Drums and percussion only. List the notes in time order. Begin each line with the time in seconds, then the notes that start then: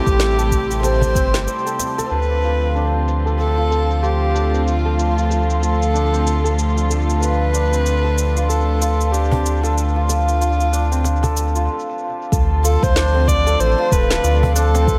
0.06 kick, shaker
0.20 snare, shaker
0.39 shaker
0.51 kick, shaker
0.71 shaker
0.83 cajon slap, shaker
1.01 cajon bass, cajon slap, shaker
1.15 kick, shaker
1.34 snare, shaker
1.48 shaker
1.67 shaker
1.79 cajon slap, shaker
1.99 cajon slap, shaker
2.12 shaker
2.44 shaker
2.63 shaker
2.76 shaker
3.08 shaker
3.27 shaker
3.40 shaker
3.72 shaker
3.91 shaker
4.04 shaker
4.36 shaker
4.55 shaker
4.67 shaker
4.99 shaker
5.18 shaker
5.31 shaker
5.50 shaker
5.63 shaker
5.82 shaker
5.96 shaker
6.14 shaker
6.27 shaker
6.46 shaker
6.59 shaker
6.78 shaker
6.91 shaker
7.10 shaker
7.23 shaker
7.54 shaker
7.73 shaker
7.86 shaker
8.18 shaker
8.37 shaker
8.50 shaker
8.82 shaker
9.01 shaker
9.14 shaker
9.31 cajon bass, cajon slap
9.46 shaker
9.63 cajon slap, shaker
9.78 shaker
10.09 cajon slap, shaker
10.28 shaker
10.42 shaker
10.60 shaker
10.74 shaker
10.92 shaker
11.04 cajon slap, shaker
11.23 cajon bass, cajon slap, shaker
11.37 shaker
11.56 shaker
12.32 kick, shaker
12.65 shaker
12.83 kick, shaker
12.96 snare, shaker
13.28 kick, shaker
13.47 shaker
13.60 shaker
13.92 kick, shaker
14.11 snare, cajon slap, shaker
14.24 shaker
14.43 cajon bass
14.56 shaker
14.75 cajon slap, shaker
14.87 kick, shaker